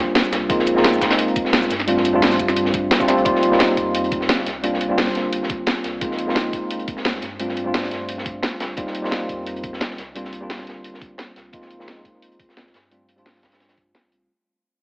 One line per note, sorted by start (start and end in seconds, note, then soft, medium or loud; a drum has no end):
0.00 0.14 G1 loud
0.00 0.52 G3 medium
0.00 0.49 A#3 medium
0.00 0.50 C4 medium
0.00 0.51 D4 medium
0.00 0.50 F4 loud
0.15 snare loud
0.15 closed hi-hat medium
0.24 shaker soft
0.32 0.48 C2 medium
0.32 snare medium
0.32 snare soft
0.32 closed hi-hat medium
0.32 shaker medium
0.49 1.00 A#1 loud
0.49 0.74 G#3 medium
0.49 0.74 A#3 medium
0.49 0.74 C4 medium
0.49 0.74 D#4 medium
0.49 0.74 F4 loud
0.49 kick loud
0.49 closed hi-hat medium
0.59 snare soft
0.67 closed hi-hat medium
0.67 shaker medium
0.75 1.69 G#3 medium
0.75 1.69 A#3 medium
0.75 1.70 C4 medium
0.75 1.70 D#4 medium
0.75 1.70 F4 loud
0.75 snare medium
0.84 snare loud
0.84 closed hi-hat loud
0.84 closed hi-hat medium
0.93 shaker soft
1.01 1.52 F1 loud
1.01 kick medium
1.01 snare loud
1.01 closed hi-hat medium
1.01 shaker medium
1.10 snare medium
1.10 snare soft
1.10 closed hi-hat medium
1.18 closed hi-hat medium
1.28 closed hi-hat soft
1.36 kick loud
1.36 closed hi-hat medium
1.36 shaker medium
1.45 snare soft
1.53 1.69 C2 loud
1.53 snare loud
1.53 closed hi-hat medium
1.62 snare soft
1.62 shaker soft
1.70 2.38 G2 medium
1.70 snare soft
1.70 closed hi-hat medium
1.70 shaker medium
1.80 snare soft
1.87 2.12 G3 medium
1.87 2.12 A3 medium
1.87 2.12 C4 medium
1.87 2.12 D4 medium
1.87 2.12 F4 loud
1.87 closed hi-hat loud
1.87 closed hi-hat medium
1.97 snare soft
2.05 closed hi-hat medium
2.05 shaker medium
2.13 2.98 G3 medium
2.13 2.98 A3 medium
2.13 2.99 C4 medium
2.13 2.99 D4 medium
2.13 2.99 F4 loud
2.22 snare loud
2.22 closed hi-hat medium
2.22 open hi-hat medium
2.31 snare soft
2.31 shaker soft
2.39 2.90 G2 loud
2.39 kick medium
2.39 closed hi-hat medium
2.39 open hi-hat medium
2.39 shaker medium
2.48 snare soft
2.48 shaker soft
2.56 closed hi-hat medium
2.56 closed hi-hat loud
2.65 snare soft
2.74 kick loud
2.74 closed hi-hat medium
2.74 shaker medium
2.91 snare loud
2.91 closed hi-hat loud
2.99 3.08 C2 medium
2.99 3.06 G3 loud
2.99 3.06 A3 medium
2.99 3.06 C4 medium
2.99 3.06 D4 medium
2.99 3.07 F4 loud
2.99 kick medium
2.99 shaker soft
3.07 3.24 C2 medium
3.07 3.23 G3 medium
3.07 3.23 A3 medium
3.07 3.23 C4 medium
3.07 3.24 D4 medium
3.07 3.24 F4 loud
3.07 snare soft
3.07 closed hi-hat medium
3.07 shaker medium
3.18 closed hi-hat soft
3.25 3.76 F1 loud
3.25 3.49 G3 medium
3.25 3.50 A#3 medium
3.25 3.50 C4 medium
3.25 3.50 D#4 medium
3.25 3.50 F4 loud
3.25 kick loud
3.25 closed hi-hat medium
3.35 snare soft
3.43 closed hi-hat medium
3.50 4.45 G3 medium
3.50 4.45 A#3 medium
3.50 4.45 C4 medium
3.50 4.46 D#4 medium
3.50 4.46 F4 loud
3.50 snare soft
3.59 snare loud
3.59 closed hi-hat loud
3.59 closed hi-hat medium
3.77 4.28 F2 loud
3.77 kick medium
3.77 closed hi-hat medium
3.95 closed hi-hat medium
4.04 closed hi-hat soft
4.12 kick loud
4.12 closed hi-hat medium
4.21 snare soft
4.29 4.45 G1 loud
4.29 snare loud
4.29 closed hi-hat medium
4.38 snare soft
4.46 5.14 C2 medium
4.46 snare soft
4.46 closed hi-hat medium
4.63 4.87 G3 medium
4.63 4.88 A#3 medium
4.63 4.88 C4 medium
4.63 4.88 D4 medium
4.63 4.88 F4 loud
4.63 closed hi-hat medium
4.74 snare soft
4.81 closed hi-hat medium
4.89 5.99 G3 medium
4.89 5.99 A#3 medium
4.89 6.00 C4 medium
4.89 6.00 D4 medium
4.89 6.00 F4 loud
4.98 snare loud
4.98 closed hi-hat medium
4.98 open hi-hat medium
5.07 snare soft
5.15 5.66 G1 loud
5.15 snare soft
5.15 closed hi-hat medium
5.33 closed hi-hat medium
5.43 snare soft
5.49 kick loud
5.49 closed hi-hat medium
5.67 snare loud
5.67 closed hi-hat medium
5.84 6.00 C2 medium
5.84 snare soft
5.84 closed hi-hat medium
6.01 6.52 A#1 loud
6.01 6.25 G#3 medium
6.01 6.25 A#3 medium
6.01 6.26 C4 medium
6.01 6.26 D#4 medium
6.01 6.26 F4 loud
6.01 kick loud
6.01 closed hi-hat medium
6.11 snare soft
6.19 closed hi-hat medium
6.26 7.21 G#3 medium
6.26 7.21 A#3 medium
6.26 7.21 C4 medium
6.26 7.22 D#4 medium
6.26 7.22 F4 loud
6.26 snare medium
6.35 snare loud
6.35 closed hi-hat medium
6.53 7.04 F1 loud
6.53 kick medium
6.53 closed hi-hat medium
6.71 closed hi-hat medium
6.79 closed hi-hat soft
6.88 kick loud
6.88 closed hi-hat medium
6.97 snare soft
7.05 7.21 C2 loud
7.05 snare loud
7.05 closed hi-hat medium
7.15 snare soft
7.22 7.90 G2 medium
7.22 snare soft
7.22 closed hi-hat medium
7.39 7.63 G3 medium
7.39 7.64 A3 medium
7.39 7.64 C4 medium
7.39 7.64 D4 medium
7.39 7.64 F4 loud
7.39 closed hi-hat medium
7.49 snare soft
7.57 closed hi-hat medium
7.64 8.75 G3 medium
7.64 8.75 A3 medium
7.64 8.75 C4 medium
7.64 8.76 D4 medium
7.64 8.76 F4 loud
7.74 snare loud
7.74 closed hi-hat medium
7.74 open hi-hat medium
7.83 snare soft
7.91 8.42 G2 loud
7.91 snare medium
7.91 closed hi-hat medium
8.09 closed hi-hat medium
8.18 snare soft
8.26 kick loud
8.26 closed hi-hat medium
8.43 snare loud
8.43 closed hi-hat medium
8.60 8.76 G1 medium
8.60 snare loud
8.60 closed hi-hat medium
8.77 9.28 F1 loud
8.77 9.01 G3 medium
8.77 9.01 A#3 medium
8.77 9.02 C4 medium
8.77 9.02 D#4 medium
8.77 9.02 F4 loud
8.77 kick loud
8.77 closed hi-hat medium
8.87 snare soft
8.95 closed hi-hat medium
9.02 9.96 G3 medium
9.02 9.97 A#3 medium
9.02 9.97 C4 medium
9.02 9.97 D#4 medium
9.02 9.98 F4 loud
9.02 snare medium
9.11 snare loud
9.11 closed hi-hat medium
9.29 9.80 F2 loud
9.29 kick medium
9.29 closed hi-hat medium
9.46 closed hi-hat medium
9.56 closed hi-hat soft
9.63 kick loud
9.63 closed hi-hat medium
9.73 snare soft
9.81 9.97 G1 loud
9.81 snare loud
9.81 closed hi-hat medium
9.90 snare soft
9.98 10.66 C2 medium
9.98 snare soft
9.98 closed hi-hat medium
10.15 10.39 G3 medium
10.15 10.40 A#3 medium
10.15 10.40 C4 medium
10.15 10.40 D4 medium
10.15 10.40 F4 loud
10.15 closed hi-hat medium
10.25 snare soft
10.33 closed hi-hat medium
10.40 11.51 G3 medium
10.40 11.51 A#3 medium
10.40 11.51 C4 medium
10.40 11.52 D4 medium
10.40 11.52 F4 loud
10.50 snare loud
10.50 closed hi-hat medium
10.50 open hi-hat medium
10.59 snare soft
10.67 11.17 G1 loud
10.67 snare medium
10.67 closed hi-hat medium
10.84 closed hi-hat medium
10.94 snare soft
11.02 kick loud
11.02 closed hi-hat medium
11.18 snare loud
11.18 closed hi-hat medium
11.36 11.52 C2 medium
11.36 snare soft
11.36 closed hi-hat medium
11.53 12.04 A#1 loud
11.53 11.77 G#3 medium
11.53 11.77 A#3 medium
11.53 11.77 C4 medium
11.53 11.78 D#4 medium
11.53 11.78 F4 loud
11.53 kick loud
11.53 closed hi-hat medium
11.62 snare soft
11.70 closed hi-hat medium
11.78 12.72 G#3 medium
11.78 12.73 A#3 medium
11.78 12.73 C4 medium
11.78 12.73 D#4 medium
11.78 12.74 F4 loud
11.78 snare soft
11.88 snare loud
11.88 closed hi-hat medium
12.05 12.55 F1 loud
12.05 kick medium
12.05 closed hi-hat medium
12.22 closed hi-hat medium
12.32 closed hi-hat soft
12.40 kick loud
12.40 closed hi-hat medium
12.49 snare soft
12.57 12.72 C2 loud
12.57 snare loud
12.57 closed hi-hat medium
12.66 snare soft
12.74 13.42 G2 medium
12.74 snare medium
12.74 closed hi-hat medium
12.91 13.15 G3 medium
12.91 13.15 A3 medium
12.91 13.15 C4 medium
12.91 13.16 D4 medium
12.91 13.16 F4 loud
12.91 closed hi-hat medium
13.09 closed hi-hat medium
13.16 14.27 G3 medium
13.16 14.27 A3 medium
13.16 14.27 C4 medium
13.16 14.28 D4 medium
13.16 14.28 F4 loud
13.16 closed hi-hat soft
13.25 snare loud
13.25 closed hi-hat medium
13.25 open hi-hat medium
13.35 snare soft
13.43 13.93 G2 loud
13.43 kick medium
13.43 snare loud
13.43 closed hi-hat medium
13.52 snare loud
13.52 closed hi-hat medium
13.60 snare loud
13.60 closed hi-hat medium
13.69 snare loud
13.69 closed hi-hat medium
13.77 kick medium
13.77 closed hi-hat medium
13.95 snare loud
13.95 closed hi-hat medium
14.12 14.28 C2 medium
14.12 closed hi-hat medium